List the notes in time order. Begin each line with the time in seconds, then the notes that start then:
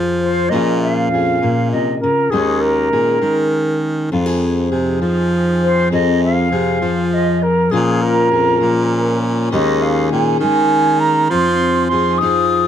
Already playing: F2 F3 G#4
0.20 C5
0.49 A#2 F3 D#5
0.53 C#4 F4 G#4
0.81 F5
1.11 F2 G#4
1.41 A#2
1.71 C3 D#5
1.99 A#4
2.03 C#3
2.30 D#2 D#3 G#3 C#4 D#4 G#4
2.60 A#4
2.91 A#2 G#4
3.21 D#3 G#3
4.11 F2 F3 C4 D#4 F4 G#4
4.26 G#4
4.71 C3 G#4
5.01 F3
5.62 C5
5.91 F2 F4 G#4 D#5
6.23 F5
6.51 C3 G#4
6.81 F3
7.13 D#5
7.42 A#4
7.71 A#2 F3 G#3 A#3 C#4 F4 G#4
8.02 A#4
8.31 F2 G#4
8.60 A#2 F3
9.50 D#2 D#3 G#3 C#4 G#4 D#5
9.54 D#4 G#4
9.81 F5
10.12 A#2 G#4 G#5
10.40 D#3 G#3 G#5
10.99 A#5
11.29 F2 F3 D#4 G#4 C6
11.87 F3 C6
11.93 G#4
12.18 F3 D#4 D#6
12.22 F4 G#4